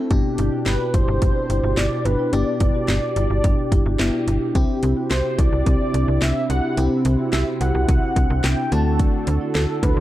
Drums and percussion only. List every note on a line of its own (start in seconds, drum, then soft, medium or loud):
0.11 kick loud
0.11 closed hi-hat medium
0.38 closed hi-hat medium
0.66 snare loud
0.66 closed hi-hat medium
0.94 kick medium
0.94 closed hi-hat medium
1.22 kick loud
1.22 closed hi-hat medium
1.50 closed hi-hat medium
1.77 snare loud
1.77 closed hi-hat medium
2.05 closed hi-hat medium
2.33 closed hi-hat medium
2.60 kick loud
2.60 closed hi-hat medium
2.88 snare loud
2.88 closed hi-hat medium
3.16 closed hi-hat medium
3.44 kick medium
3.44 closed hi-hat medium
3.72 kick medium
3.72 closed hi-hat medium
3.99 snare loud
3.99 closed hi-hat medium
4.28 closed hi-hat medium
4.55 kick loud
4.55 closed hi-hat medium
4.83 closed hi-hat medium
5.11 snare loud
5.11 closed hi-hat medium
5.39 kick medium
5.39 closed hi-hat medium
5.66 kick medium
5.66 closed hi-hat medium
5.94 closed hi-hat medium
6.22 snare loud
6.22 closed hi-hat medium
6.50 closed hi-hat medium
6.77 closed hi-hat medium
7.05 closed hi-hat medium
7.33 snare loud
7.33 closed hi-hat medium
7.61 closed hi-hat medium
7.89 kick loud
7.89 closed hi-hat medium
8.16 kick medium
8.16 closed hi-hat medium
8.44 snare loud
8.44 closed hi-hat medium
8.72 closed hi-hat medium
8.99 kick loud
8.99 closed hi-hat medium
9.27 closed hi-hat medium
9.55 snare loud
9.55 closed hi-hat medium
9.83 kick medium
9.83 closed hi-hat medium